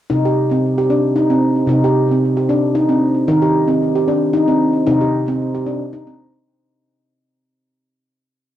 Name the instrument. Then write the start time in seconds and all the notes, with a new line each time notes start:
handpan
0.10 C3 D#4
0.25 G4
0.51 C4
0.78 G4
0.90 D4
1.16 D#4
1.30 C4
1.67 C3 D#4
1.84 G4
2.11 C4
2.37 G4
2.49 D4
2.75 D#4
2.89 C4
3.28 D#3 D#4
3.42 G4
3.68 C4
3.96 G4
4.08 D4
4.33 D#4
4.48 C4
4.87 C3 D#4
5.01 G4
5.28 C4
5.55 G4
5.67 D4
5.93 D#4
6.07 C4